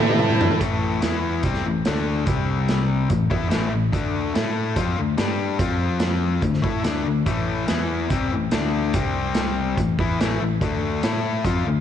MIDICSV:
0, 0, Header, 1, 6, 480
1, 0, Start_track
1, 0, Tempo, 416956
1, 703, Time_signature, 4, 2, 24, 8
1, 13590, End_track
2, 0, Start_track
2, 0, Title_t, "Tonewheel organ"
2, 0, Program_c, 0, 16
2, 27, Note_on_c, 0, 52, 64
2, 44, Note_on_c, 0, 64, 69
2, 46, Note_on_c, 0, 57, 59
2, 51, Note_on_c, 0, 74, 90
2, 252, Note_off_c, 0, 74, 0
2, 281, Note_on_c, 0, 72, 85
2, 326, Note_off_c, 0, 52, 0
2, 335, Note_off_c, 0, 57, 0
2, 335, Note_off_c, 0, 64, 0
2, 486, Note_off_c, 0, 72, 0
2, 528, Note_on_c, 0, 64, 89
2, 534, Note_on_c, 0, 69, 106
2, 721, Note_off_c, 0, 64, 0
2, 732, Note_off_c, 0, 69, 0
2, 13590, End_track
3, 0, Start_track
3, 0, Title_t, "Upright piano"
3, 0, Program_c, 1, 0
3, 0, Note_on_c, 1, 57, 73
3, 0, Note_on_c, 1, 64, 70
3, 0, Note_on_c, 1, 69, 85
3, 553, Note_off_c, 1, 57, 0
3, 564, Note_off_c, 1, 64, 0
3, 565, Note_off_c, 1, 69, 0
3, 13590, End_track
4, 0, Start_track
4, 0, Title_t, "Overdriven electric guitar"
4, 0, Program_c, 2, 29
4, 0, Note_on_c, 2, 57, 91
4, 0, Note_on_c, 2, 64, 92
4, 0, Note_on_c, 2, 69, 113
4, 684, Note_on_c, 2, 45, 92
4, 685, Note_off_c, 2, 57, 0
4, 689, Note_on_c, 2, 52, 89
4, 691, Note_off_c, 2, 64, 0
4, 693, Note_off_c, 2, 69, 0
4, 705, Note_on_c, 2, 57, 106
4, 1157, Note_off_c, 2, 52, 0
4, 1165, Note_off_c, 2, 45, 0
4, 1171, Note_on_c, 2, 52, 77
4, 1175, Note_off_c, 2, 57, 0
4, 1181, Note_on_c, 2, 59, 91
4, 1193, Note_on_c, 2, 64, 94
4, 1648, Note_off_c, 2, 52, 0
4, 1653, Note_off_c, 2, 59, 0
4, 1659, Note_off_c, 2, 64, 0
4, 1659, Note_on_c, 2, 48, 75
4, 1668, Note_on_c, 2, 55, 82
4, 1671, Note_on_c, 2, 60, 97
4, 1892, Note_off_c, 2, 48, 0
4, 1897, Note_off_c, 2, 55, 0
4, 1898, Note_off_c, 2, 60, 0
4, 1901, Note_on_c, 2, 45, 59
4, 1904, Note_on_c, 2, 52, 62
4, 2092, Note_off_c, 2, 45, 0
4, 2094, Note_off_c, 2, 52, 0
4, 2152, Note_on_c, 2, 50, 89
4, 2152, Note_on_c, 2, 57, 91
4, 2159, Note_on_c, 2, 62, 95
4, 2613, Note_off_c, 2, 50, 0
4, 2613, Note_on_c, 2, 48, 86
4, 2626, Note_off_c, 2, 57, 0
4, 2626, Note_on_c, 2, 55, 96
4, 2633, Note_off_c, 2, 62, 0
4, 2633, Note_on_c, 2, 60, 90
4, 3563, Note_off_c, 2, 55, 0
4, 3564, Note_off_c, 2, 48, 0
4, 3568, Note_on_c, 2, 52, 61
4, 3569, Note_on_c, 2, 45, 62
4, 3579, Note_off_c, 2, 60, 0
4, 3766, Note_off_c, 2, 45, 0
4, 3766, Note_off_c, 2, 52, 0
4, 3799, Note_on_c, 2, 52, 79
4, 3805, Note_on_c, 2, 59, 76
4, 3807, Note_on_c, 2, 64, 95
4, 4012, Note_off_c, 2, 52, 0
4, 4017, Note_on_c, 2, 45, 84
4, 4027, Note_off_c, 2, 59, 0
4, 4029, Note_off_c, 2, 64, 0
4, 4032, Note_on_c, 2, 52, 88
4, 4033, Note_on_c, 2, 57, 90
4, 4245, Note_off_c, 2, 45, 0
4, 4249, Note_off_c, 2, 52, 0
4, 4259, Note_on_c, 2, 45, 67
4, 4263, Note_on_c, 2, 52, 65
4, 4280, Note_off_c, 2, 57, 0
4, 4472, Note_off_c, 2, 45, 0
4, 4474, Note_off_c, 2, 52, 0
4, 4518, Note_on_c, 2, 50, 101
4, 4531, Note_on_c, 2, 57, 96
4, 4533, Note_on_c, 2, 62, 98
4, 4987, Note_off_c, 2, 57, 0
4, 5001, Note_off_c, 2, 62, 0
4, 5001, Note_on_c, 2, 57, 95
4, 5002, Note_off_c, 2, 50, 0
4, 5006, Note_on_c, 2, 64, 93
4, 5016, Note_on_c, 2, 69, 94
4, 5477, Note_on_c, 2, 53, 85
4, 5481, Note_off_c, 2, 57, 0
4, 5482, Note_off_c, 2, 64, 0
4, 5485, Note_on_c, 2, 60, 87
4, 5487, Note_on_c, 2, 65, 102
4, 5492, Note_off_c, 2, 69, 0
4, 5723, Note_off_c, 2, 53, 0
4, 5727, Note_off_c, 2, 60, 0
4, 5727, Note_off_c, 2, 65, 0
4, 5729, Note_on_c, 2, 50, 55
4, 5736, Note_on_c, 2, 57, 64
4, 5928, Note_off_c, 2, 50, 0
4, 5931, Note_off_c, 2, 57, 0
4, 5957, Note_on_c, 2, 55, 84
4, 5967, Note_on_c, 2, 62, 86
4, 5977, Note_on_c, 2, 67, 87
4, 6436, Note_on_c, 2, 53, 84
4, 6439, Note_off_c, 2, 55, 0
4, 6441, Note_off_c, 2, 62, 0
4, 6444, Note_on_c, 2, 60, 92
4, 6445, Note_on_c, 2, 65, 100
4, 6453, Note_off_c, 2, 67, 0
4, 7385, Note_off_c, 2, 53, 0
4, 7389, Note_off_c, 2, 60, 0
4, 7390, Note_on_c, 2, 50, 60
4, 7394, Note_on_c, 2, 57, 65
4, 7408, Note_off_c, 2, 65, 0
4, 7599, Note_off_c, 2, 50, 0
4, 7601, Note_off_c, 2, 57, 0
4, 7623, Note_on_c, 2, 57, 73
4, 7635, Note_on_c, 2, 69, 88
4, 7637, Note_on_c, 2, 64, 87
4, 7859, Note_off_c, 2, 57, 0
4, 7866, Note_on_c, 2, 50, 75
4, 7873, Note_off_c, 2, 64, 0
4, 7873, Note_on_c, 2, 57, 92
4, 7878, Note_on_c, 2, 62, 91
4, 7883, Note_off_c, 2, 69, 0
4, 8097, Note_off_c, 2, 50, 0
4, 8101, Note_off_c, 2, 57, 0
4, 8111, Note_on_c, 2, 50, 67
4, 8115, Note_on_c, 2, 57, 63
4, 8124, Note_off_c, 2, 62, 0
4, 8320, Note_off_c, 2, 50, 0
4, 8322, Note_off_c, 2, 57, 0
4, 8357, Note_on_c, 2, 45, 94
4, 8359, Note_on_c, 2, 52, 97
4, 8377, Note_on_c, 2, 57, 103
4, 8817, Note_off_c, 2, 52, 0
4, 8826, Note_off_c, 2, 45, 0
4, 8831, Note_on_c, 2, 52, 97
4, 8840, Note_off_c, 2, 57, 0
4, 8840, Note_on_c, 2, 59, 92
4, 8845, Note_on_c, 2, 64, 90
4, 9322, Note_off_c, 2, 52, 0
4, 9326, Note_off_c, 2, 59, 0
4, 9328, Note_off_c, 2, 64, 0
4, 9328, Note_on_c, 2, 48, 89
4, 9332, Note_on_c, 2, 55, 89
4, 9347, Note_on_c, 2, 60, 90
4, 9570, Note_off_c, 2, 48, 0
4, 9572, Note_off_c, 2, 55, 0
4, 9579, Note_off_c, 2, 60, 0
4, 9582, Note_on_c, 2, 52, 59
4, 9586, Note_on_c, 2, 45, 59
4, 9776, Note_off_c, 2, 52, 0
4, 9778, Note_off_c, 2, 45, 0
4, 9807, Note_on_c, 2, 50, 90
4, 9811, Note_on_c, 2, 57, 93
4, 9819, Note_on_c, 2, 62, 82
4, 10290, Note_off_c, 2, 50, 0
4, 10292, Note_off_c, 2, 57, 0
4, 10294, Note_on_c, 2, 48, 85
4, 10296, Note_off_c, 2, 62, 0
4, 10305, Note_on_c, 2, 60, 99
4, 10312, Note_on_c, 2, 55, 92
4, 11254, Note_off_c, 2, 48, 0
4, 11259, Note_off_c, 2, 60, 0
4, 11260, Note_on_c, 2, 45, 58
4, 11262, Note_off_c, 2, 55, 0
4, 11269, Note_on_c, 2, 52, 58
4, 11455, Note_off_c, 2, 45, 0
4, 11460, Note_off_c, 2, 52, 0
4, 11512, Note_on_c, 2, 59, 88
4, 11514, Note_on_c, 2, 52, 79
4, 11515, Note_on_c, 2, 64, 92
4, 11738, Note_off_c, 2, 52, 0
4, 11742, Note_off_c, 2, 59, 0
4, 11744, Note_off_c, 2, 64, 0
4, 11744, Note_on_c, 2, 45, 84
4, 11752, Note_on_c, 2, 52, 90
4, 11757, Note_on_c, 2, 57, 97
4, 11973, Note_off_c, 2, 45, 0
4, 11978, Note_off_c, 2, 52, 0
4, 11985, Note_off_c, 2, 57, 0
4, 11987, Note_on_c, 2, 45, 61
4, 11992, Note_on_c, 2, 52, 67
4, 12179, Note_off_c, 2, 45, 0
4, 12181, Note_off_c, 2, 52, 0
4, 12219, Note_on_c, 2, 50, 95
4, 12229, Note_on_c, 2, 57, 104
4, 12234, Note_on_c, 2, 62, 101
4, 12691, Note_off_c, 2, 57, 0
4, 12696, Note_off_c, 2, 50, 0
4, 12703, Note_off_c, 2, 62, 0
4, 12705, Note_on_c, 2, 57, 88
4, 12709, Note_on_c, 2, 64, 87
4, 12714, Note_on_c, 2, 69, 94
4, 13178, Note_off_c, 2, 57, 0
4, 13179, Note_on_c, 2, 53, 88
4, 13180, Note_off_c, 2, 64, 0
4, 13183, Note_off_c, 2, 69, 0
4, 13187, Note_on_c, 2, 60, 91
4, 13188, Note_on_c, 2, 65, 99
4, 13415, Note_off_c, 2, 53, 0
4, 13419, Note_off_c, 2, 60, 0
4, 13420, Note_off_c, 2, 65, 0
4, 13429, Note_on_c, 2, 57, 61
4, 13432, Note_on_c, 2, 50, 59
4, 13590, Note_off_c, 2, 50, 0
4, 13590, Note_off_c, 2, 57, 0
4, 13590, End_track
5, 0, Start_track
5, 0, Title_t, "Picked electric bass"
5, 0, Program_c, 3, 34
5, 0, Note_on_c, 3, 45, 101
5, 661, Note_off_c, 3, 45, 0
5, 702, Note_on_c, 3, 33, 92
5, 1147, Note_off_c, 3, 33, 0
5, 1190, Note_on_c, 3, 40, 90
5, 1631, Note_off_c, 3, 40, 0
5, 1651, Note_on_c, 3, 36, 82
5, 1878, Note_off_c, 3, 36, 0
5, 1897, Note_on_c, 3, 33, 71
5, 2121, Note_off_c, 3, 33, 0
5, 2160, Note_on_c, 3, 38, 86
5, 2597, Note_off_c, 3, 38, 0
5, 2609, Note_on_c, 3, 36, 86
5, 3528, Note_off_c, 3, 36, 0
5, 3570, Note_on_c, 3, 33, 69
5, 3798, Note_off_c, 3, 33, 0
5, 3812, Note_on_c, 3, 40, 88
5, 4039, Note_off_c, 3, 40, 0
5, 4061, Note_on_c, 3, 33, 80
5, 4284, Note_off_c, 3, 33, 0
5, 4310, Note_on_c, 3, 33, 67
5, 4518, Note_off_c, 3, 33, 0
5, 4525, Note_on_c, 3, 38, 82
5, 4979, Note_off_c, 3, 38, 0
5, 5029, Note_on_c, 3, 45, 88
5, 5472, Note_off_c, 3, 45, 0
5, 5485, Note_on_c, 3, 41, 84
5, 5716, Note_off_c, 3, 41, 0
5, 5746, Note_on_c, 3, 38, 66
5, 5962, Note_off_c, 3, 38, 0
5, 5969, Note_on_c, 3, 43, 86
5, 6422, Note_off_c, 3, 43, 0
5, 6446, Note_on_c, 3, 41, 89
5, 7370, Note_off_c, 3, 41, 0
5, 7390, Note_on_c, 3, 38, 63
5, 7629, Note_off_c, 3, 38, 0
5, 7642, Note_on_c, 3, 45, 86
5, 7876, Note_off_c, 3, 45, 0
5, 7893, Note_on_c, 3, 38, 83
5, 8122, Note_off_c, 3, 38, 0
5, 8136, Note_on_c, 3, 38, 68
5, 8354, Note_off_c, 3, 38, 0
5, 8361, Note_on_c, 3, 33, 89
5, 8819, Note_off_c, 3, 33, 0
5, 8873, Note_on_c, 3, 40, 93
5, 9316, Note_off_c, 3, 40, 0
5, 9326, Note_on_c, 3, 36, 82
5, 9559, Note_off_c, 3, 36, 0
5, 9602, Note_on_c, 3, 33, 75
5, 9818, Note_off_c, 3, 33, 0
5, 9833, Note_on_c, 3, 38, 84
5, 10277, Note_off_c, 3, 38, 0
5, 10294, Note_on_c, 3, 36, 84
5, 11215, Note_off_c, 3, 36, 0
5, 11257, Note_on_c, 3, 33, 62
5, 11485, Note_off_c, 3, 33, 0
5, 11502, Note_on_c, 3, 40, 86
5, 11727, Note_off_c, 3, 40, 0
5, 11739, Note_on_c, 3, 33, 88
5, 11966, Note_off_c, 3, 33, 0
5, 11981, Note_on_c, 3, 33, 71
5, 12207, Note_off_c, 3, 33, 0
5, 12225, Note_on_c, 3, 38, 98
5, 12672, Note_off_c, 3, 38, 0
5, 12708, Note_on_c, 3, 45, 91
5, 13154, Note_off_c, 3, 45, 0
5, 13180, Note_on_c, 3, 41, 87
5, 13406, Note_off_c, 3, 41, 0
5, 13420, Note_on_c, 3, 38, 73
5, 13590, Note_off_c, 3, 38, 0
5, 13590, End_track
6, 0, Start_track
6, 0, Title_t, "Drums"
6, 110, Note_on_c, 9, 48, 66
6, 220, Note_on_c, 9, 47, 84
6, 225, Note_off_c, 9, 48, 0
6, 335, Note_off_c, 9, 47, 0
6, 347, Note_on_c, 9, 45, 69
6, 462, Note_off_c, 9, 45, 0
6, 469, Note_on_c, 9, 43, 111
6, 584, Note_off_c, 9, 43, 0
6, 587, Note_on_c, 9, 43, 94
6, 698, Note_on_c, 9, 42, 61
6, 701, Note_on_c, 9, 36, 104
6, 702, Note_off_c, 9, 43, 0
6, 813, Note_off_c, 9, 42, 0
6, 816, Note_off_c, 9, 36, 0
6, 1174, Note_on_c, 9, 42, 56
6, 1181, Note_on_c, 9, 38, 90
6, 1289, Note_off_c, 9, 42, 0
6, 1296, Note_off_c, 9, 38, 0
6, 1645, Note_on_c, 9, 42, 56
6, 1654, Note_on_c, 9, 36, 87
6, 1760, Note_off_c, 9, 42, 0
6, 1769, Note_off_c, 9, 36, 0
6, 1772, Note_on_c, 9, 38, 31
6, 1887, Note_off_c, 9, 38, 0
6, 2130, Note_on_c, 9, 42, 56
6, 2137, Note_on_c, 9, 38, 103
6, 2245, Note_off_c, 9, 42, 0
6, 2252, Note_off_c, 9, 38, 0
6, 2608, Note_on_c, 9, 42, 58
6, 2613, Note_on_c, 9, 36, 101
6, 2723, Note_off_c, 9, 42, 0
6, 2728, Note_off_c, 9, 36, 0
6, 3090, Note_on_c, 9, 42, 50
6, 3097, Note_on_c, 9, 38, 94
6, 3205, Note_off_c, 9, 42, 0
6, 3212, Note_off_c, 9, 38, 0
6, 3565, Note_on_c, 9, 42, 51
6, 3571, Note_on_c, 9, 36, 71
6, 3681, Note_off_c, 9, 42, 0
6, 3686, Note_off_c, 9, 36, 0
6, 3812, Note_on_c, 9, 36, 102
6, 3927, Note_off_c, 9, 36, 0
6, 4042, Note_on_c, 9, 42, 52
6, 4049, Note_on_c, 9, 38, 93
6, 4158, Note_off_c, 9, 42, 0
6, 4164, Note_off_c, 9, 38, 0
6, 4528, Note_on_c, 9, 36, 100
6, 4533, Note_on_c, 9, 42, 57
6, 4643, Note_off_c, 9, 36, 0
6, 4648, Note_off_c, 9, 42, 0
6, 5012, Note_on_c, 9, 42, 58
6, 5018, Note_on_c, 9, 38, 92
6, 5127, Note_off_c, 9, 42, 0
6, 5134, Note_off_c, 9, 38, 0
6, 5482, Note_on_c, 9, 42, 59
6, 5483, Note_on_c, 9, 36, 91
6, 5597, Note_off_c, 9, 42, 0
6, 5599, Note_off_c, 9, 36, 0
6, 5959, Note_on_c, 9, 42, 60
6, 5966, Note_on_c, 9, 38, 101
6, 6074, Note_off_c, 9, 42, 0
6, 6081, Note_off_c, 9, 38, 0
6, 6437, Note_on_c, 9, 36, 97
6, 6439, Note_on_c, 9, 42, 62
6, 6553, Note_off_c, 9, 36, 0
6, 6554, Note_off_c, 9, 42, 0
6, 6902, Note_on_c, 9, 42, 54
6, 6909, Note_on_c, 9, 38, 95
6, 7017, Note_off_c, 9, 42, 0
6, 7024, Note_off_c, 9, 38, 0
6, 7392, Note_on_c, 9, 42, 53
6, 7395, Note_on_c, 9, 36, 84
6, 7507, Note_off_c, 9, 42, 0
6, 7510, Note_off_c, 9, 36, 0
6, 7522, Note_on_c, 9, 38, 30
6, 7637, Note_off_c, 9, 38, 0
6, 7640, Note_on_c, 9, 36, 94
6, 7756, Note_off_c, 9, 36, 0
6, 7876, Note_on_c, 9, 42, 59
6, 7883, Note_on_c, 9, 38, 93
6, 7991, Note_off_c, 9, 42, 0
6, 7998, Note_off_c, 9, 38, 0
6, 8362, Note_on_c, 9, 36, 92
6, 8362, Note_on_c, 9, 42, 54
6, 8477, Note_off_c, 9, 36, 0
6, 8477, Note_off_c, 9, 42, 0
6, 8839, Note_on_c, 9, 42, 54
6, 8846, Note_on_c, 9, 38, 94
6, 8954, Note_off_c, 9, 42, 0
6, 8961, Note_off_c, 9, 38, 0
6, 9327, Note_on_c, 9, 42, 58
6, 9329, Note_on_c, 9, 36, 90
6, 9442, Note_off_c, 9, 42, 0
6, 9444, Note_off_c, 9, 36, 0
6, 9800, Note_on_c, 9, 42, 61
6, 9807, Note_on_c, 9, 38, 102
6, 9915, Note_off_c, 9, 42, 0
6, 9922, Note_off_c, 9, 38, 0
6, 10287, Note_on_c, 9, 42, 65
6, 10292, Note_on_c, 9, 36, 91
6, 10402, Note_off_c, 9, 42, 0
6, 10407, Note_off_c, 9, 36, 0
6, 10758, Note_on_c, 9, 42, 54
6, 10765, Note_on_c, 9, 38, 97
6, 10873, Note_off_c, 9, 42, 0
6, 10880, Note_off_c, 9, 38, 0
6, 11253, Note_on_c, 9, 36, 84
6, 11253, Note_on_c, 9, 42, 53
6, 11368, Note_off_c, 9, 36, 0
6, 11368, Note_off_c, 9, 42, 0
6, 11498, Note_on_c, 9, 36, 99
6, 11613, Note_off_c, 9, 36, 0
6, 11748, Note_on_c, 9, 42, 57
6, 11755, Note_on_c, 9, 38, 105
6, 11863, Note_off_c, 9, 42, 0
6, 11870, Note_off_c, 9, 38, 0
6, 12217, Note_on_c, 9, 36, 101
6, 12222, Note_on_c, 9, 42, 52
6, 12332, Note_off_c, 9, 36, 0
6, 12337, Note_off_c, 9, 42, 0
6, 12697, Note_on_c, 9, 42, 56
6, 12704, Note_on_c, 9, 38, 101
6, 12813, Note_off_c, 9, 42, 0
6, 12819, Note_off_c, 9, 38, 0
6, 13177, Note_on_c, 9, 36, 91
6, 13180, Note_on_c, 9, 42, 53
6, 13292, Note_off_c, 9, 36, 0
6, 13295, Note_off_c, 9, 42, 0
6, 13590, End_track
0, 0, End_of_file